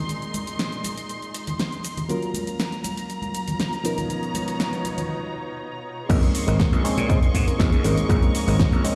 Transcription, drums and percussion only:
0.09 closed hi-hat, maracas, shaker
0.22 closed hi-hat, shaker
0.33 closed hi-hat, high conga, maracas, shaker
0.47 closed hi-hat, maracas, shaker
0.59 snare, closed hi-hat, maracas, shaker
0.72 closed hi-hat, shaker
0.84 closed hi-hat, high conga, maracas, shaker
0.97 closed hi-hat, maracas, shaker
1.09 closed hi-hat, maracas, shaker
1.22 closed hi-hat, shaker
1.34 closed hi-hat, maracas, shaker
1.47 closed hi-hat, low conga, maracas, shaker
1.59 snare, closed hi-hat, maracas, shaker
1.72 closed hi-hat, maracas, shaker
1.83 closed hi-hat, maracas, shaker
1.97 closed hi-hat, low conga, maracas, shaker
2.09 closed hi-hat, maracas, shaker
2.22 closed hi-hat, shaker
2.34 closed hi-hat, high conga, maracas, shaker
2.47 closed hi-hat, maracas, shaker
2.58 snare, closed hi-hat, maracas, shaker
2.72 closed hi-hat, shaker
2.84 closed hi-hat, high conga, maracas, shaker
2.97 closed hi-hat, maracas, shaker
3.08 closed hi-hat, maracas, shaker
3.22 closed hi-hat, high conga, shaker
3.34 closed hi-hat, maracas, shaker
3.48 closed hi-hat, low conga, maracas, shaker
3.59 snare, closed hi-hat, maracas, shaker
3.73 closed hi-hat, maracas, shaker
3.85 closed hi-hat, maracas, shaker
3.98 closed hi-hat, high conga, low conga, maracas, shaker
4.09 closed hi-hat, maracas, shaker
4.23 closed hi-hat, shaker
4.34 closed hi-hat, high conga, maracas, shaker
4.48 closed hi-hat, maracas, shaker
4.60 snare, closed hi-hat, maracas, shaker
4.73 closed hi-hat, maracas, shaker
4.85 closed hi-hat, high conga, maracas, shaker
4.98 closed hi-hat, low conga, maracas, shaker
6.10 kick, closed hi-hat, crash, shaker
6.23 closed hi-hat, shaker
6.35 open hi-hat, shaker
6.48 closed hi-hat, shaker
6.60 kick, snare, closed hi-hat, shaker
6.73 closed hi-hat, shaker
6.85 open hi-hat, shaker
6.98 closed hi-hat, shaker
7.10 kick, closed hi-hat, shaker
7.23 closed hi-hat, shaker
7.34 kick, open hi-hat, shaker
7.48 closed hi-hat, shaker
7.60 kick, snare, closed hi-hat, shaker
7.73 closed hi-hat, shaker
7.84 open hi-hat, shaker
7.97 closed hi-hat, shaker
8.10 kick, closed hi-hat, shaker
8.23 closed hi-hat, shaker
8.35 open hi-hat, shaker
8.48 open hi-hat, shaker
8.60 kick, snare, closed hi-hat, shaker
8.73 closed hi-hat, shaker
8.85 open hi-hat, shaker

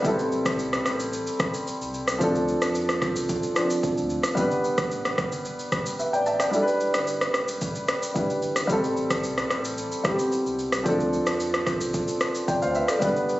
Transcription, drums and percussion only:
0.05 kick, shaker
0.19 shaker
0.32 shaker
0.46 kick, cross-stick, shaker
0.59 shaker
0.73 cross-stick, shaker
0.86 cross-stick, shaker
1.00 shaker
1.13 shaker
1.27 shaker
1.40 kick, cross-stick, shaker
1.54 shaker
1.67 shaker
1.82 shaker
1.94 shaker
2.08 cross-stick, shaker
2.21 kick, shaker
2.35 shaker
2.48 shaker
2.62 cross-stick, shaker
2.75 shaker
2.89 cross-stick, shaker
3.02 kick, cross-stick, shaker
3.16 shaker
3.29 kick, shaker
3.43 shaker
3.56 cross-stick, shaker
3.70 shaker
3.83 kick, shaker
3.98 shaker
4.10 shaker
4.23 cross-stick, shaker
4.37 kick, shaker
4.51 shaker
4.64 shaker
4.78 kick, cross-stick, shaker
4.91 shaker
5.05 cross-stick, shaker
5.18 kick, cross-stick, shaker
5.32 shaker
5.45 shaker
5.59 shaker
5.72 kick, cross-stick, shaker
5.86 shaker
5.99 shaker
6.14 shaker
6.26 shaker
6.40 cross-stick, shaker
6.53 shaker
6.68 shaker
6.80 shaker
6.94 cross-stick, shaker
7.07 shaker
7.21 cross-stick, shaker
7.34 cross-stick, shaker
7.48 shaker
7.61 kick, shaker
7.75 shaker
7.88 cross-stick, shaker
8.02 shaker
8.16 kick, shaker
8.30 shaker
8.42 shaker
8.56 cross-stick, shaker
8.69 kick, shaker
8.84 shaker
8.97 shaker
9.10 kick, cross-stick, shaker
9.24 shaker
9.38 cross-stick, shaker
9.50 cross-stick, shaker
9.65 shaker
9.78 shaker
9.92 shaker
10.05 kick, cross-stick, shaker
10.19 shaker
10.32 shaker
10.46 shaker
10.59 shaker
10.72 cross-stick, shaker
10.86 kick, shaker
11.00 shaker
11.13 shaker
11.27 cross-stick, shaker
11.40 shaker
11.54 cross-stick, shaker
11.67 kick, cross-stick, shaker
11.81 shaker
11.94 kick, shaker
12.08 shaker
12.21 cross-stick, shaker
12.35 shaker
12.48 kick, shaker
12.62 shaker
12.75 shaker
12.88 cross-stick, shaker
13.02 kick, shaker
13.16 shaker
13.29 shaker

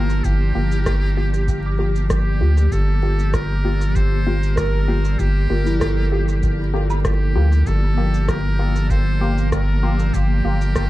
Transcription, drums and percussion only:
0.10 shaker
0.24 kick, shaker
0.72 shaker
0.86 kick, cross-stick, shaker
1.34 shaker
1.48 kick, shaker
1.96 shaker
2.10 kick, cross-stick, shaker
2.57 shaker
2.72 kick, shaker
3.19 shaker
3.34 kick, cross-stick, shaker
3.81 shaker
3.96 kick, shaker
4.43 shaker
4.57 kick, cross-stick, shaker
5.05 shaker
5.19 kick, shaker
5.67 shaker
5.81 kick, cross-stick, shaker
6.28 shaker
6.43 kick, shaker
6.90 low woodblock, shaker
7.05 kick, cross-stick, shaker
7.52 shaker
7.66 kick, shaker
8.14 shaker
8.28 kick, cross-stick, shaker
8.76 shaker
8.90 kick, shaker
9.38 shaker
9.52 kick, cross-stick, shaker
9.99 shaker
10.14 kick, shaker
10.61 shaker
10.76 kick, cross-stick, shaker

